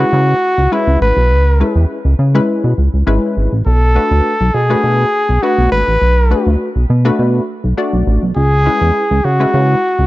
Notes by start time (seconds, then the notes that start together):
Already playing: F#4
0.00 G#3 C#4 E4 B4
0.13 C#3
0.58 C#2
0.72 G#3 C#4 E4 B4
0.87 C#2
1.01 A1 B4
1.17 B1
1.31 C#2
1.60 G#3 C#4 E4 B4
1.76 E2
2.05 C#2
2.19 C#3
2.35 G#3 C#4 E4 B4
2.64 B2
2.78 C#2
2.94 C#2
3.07 G#1 G#3 C#4 E4 B4
3.37 G#1
3.53 A1
3.66 B1 A4
3.95 A3 D4 F#4 B4
4.11 D2
4.41 B1
4.54 B2 G#4
4.70 A3 D4 F#4 B4
4.84 B2
5.29 B1
5.43 A3 D4 F#4 B4
5.58 B1
5.72 G#1 B4
5.88 A1
6.01 B1
6.31 A3 D4 F#4 B4
6.47 D2
6.76 B1
6.90 B2
7.05 A3 D4 F#4 B4
7.19 B2
7.64 B1
7.77 A3 D4 F#4 D5
7.93 B1
8.07 A1
8.23 B1
8.36 C#2 G#4
8.66 G#3 C#4 E4 B4
8.81 E2
9.11 C#2
9.25 C#3 F#4
9.40 G#3 C#4 E4 B4
9.54 C#3
9.99 C#2